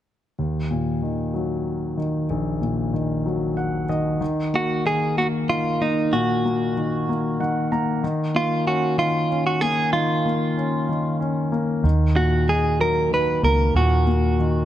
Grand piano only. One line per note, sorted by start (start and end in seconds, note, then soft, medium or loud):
0.39 2.26 D#2 soft
0.71 1.94 A#2 soft
1.02 1.96 D#3 soft
1.34 2.58 F#3 soft
1.97 2.92 D#3 soft
2.30 4.17 A#1 soft
2.61 3.85 A#2 soft
2.94 3.88 D#3 soft
3.26 4.18 F#3 soft
3.57 3.87 F#5 soft
3.89 4.19 D#3 soft
3.89 4.19 D#5 soft
4.21 4.84 D#3 soft
4.54 5.16 A#3 soft
4.86 5.48 D#3 soft
5.18 5.80 A#3 soft
5.49 6.72 D#3 soft
5.81 6.44 A#3 soft
6.13 7.99 A#2 soft
6.45 7.08 A#3 soft
6.77 7.38 D#3 soft
7.09 7.70 A#3 soft
7.40 8.01 D#3 soft
7.40 7.69 F#5 soft
7.72 8.02 A#3 soft
7.72 8.01 A#5 soft
8.04 8.96 D#3 soft
8.35 9.58 A#3 soft
8.66 9.28 C#4 soft
8.98 9.91 D#3 soft
9.30 10.53 C#4 soft
9.62 10.24 A#3 soft
9.93 10.87 D#3 soft
10.25 11.49 A#3 soft
10.57 11.19 C#4 soft
10.89 11.81 D#3 soft
11.20 11.82 C#4 soft
11.52 11.83 A#3 soft
11.84 12.46 D#3 soft
12.16 13.40 A#2 soft
12.48 13.09 D#3 soft
12.79 14.03 F#3 soft
13.11 14.35 D#3 soft
13.43 14.06 A#3 soft
13.76 14.65 A#2 medium
14.07 14.65 A#3 soft
14.40 14.65 D#3 soft